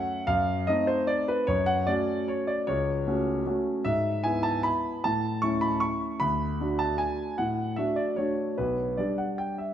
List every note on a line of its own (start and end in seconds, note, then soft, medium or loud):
0.00 0.24 F#3 soft
0.00 0.24 A3 soft
0.00 0.24 C#4 soft
0.00 0.27 F#5 medium
0.27 0.67 F#2 medium
0.27 0.67 F5 medium
0.67 1.45 A3 soft
0.67 1.45 C4 soft
0.67 1.45 D#4 soft
0.67 0.88 D#5 medium
0.87 1.08 C5 medium
1.07 1.28 D5 medium
1.28 1.48 B4 medium
1.47 1.87 F#2 medium
1.47 1.68 C#5 medium
1.66 1.88 F#5 medium
1.87 2.64 A3 soft
1.87 2.64 C#4 soft
1.87 2.64 F#4 soft
1.87 2.29 D5 medium
2.28 2.49 C#5 medium
2.47 2.67 D5 medium
2.67 3.05 C#2 medium
2.67 3.05 C#5 medium
3.07 3.42 A3 soft
3.07 3.42 C#4 soft
3.07 3.42 F#4 soft
3.46 3.82 A3 soft
3.46 3.82 C#4 soft
3.46 3.82 F#4 soft
3.85 4.23 G#2 medium
3.85 4.24 E5 medium
4.24 5.00 B3 soft
4.24 5.00 E4 soft
4.24 4.44 G#5 medium
4.43 4.64 A5 medium
4.63 5.03 B5 medium
5.04 5.42 A2 medium
5.04 5.42 A5 medium
5.42 6.18 A3 soft
5.42 6.18 C#4 soft
5.42 6.18 E4 soft
5.42 5.62 C#6 medium
5.61 5.82 B5 medium
5.80 6.20 C#6 medium
6.20 6.59 D2 medium
6.20 6.79 B5 medium
6.61 7.35 A3 soft
6.61 7.35 D4 soft
6.61 7.35 F#4 soft
6.79 6.99 A5 medium
6.98 7.38 G#5 medium
7.38 7.76 A2 medium
7.38 7.77 F#5 medium
7.76 8.14 A3 soft
7.76 8.14 D4 soft
7.76 8.14 F#4 soft
7.76 7.96 E5 medium
7.96 8.17 D5 medium
8.16 8.54 A3 soft
8.16 8.54 D4 soft
8.16 8.54 F#4 soft
8.16 8.57 C#5 medium
8.58 8.97 B1 soft
8.58 8.98 B4 medium
8.97 9.74 G3 soft
8.97 9.74 D4 soft
8.97 9.74 G4 soft
8.97 9.18 D5 medium
9.18 9.38 F#5 medium
9.38 9.59 G5 medium
9.58 9.74 E5 medium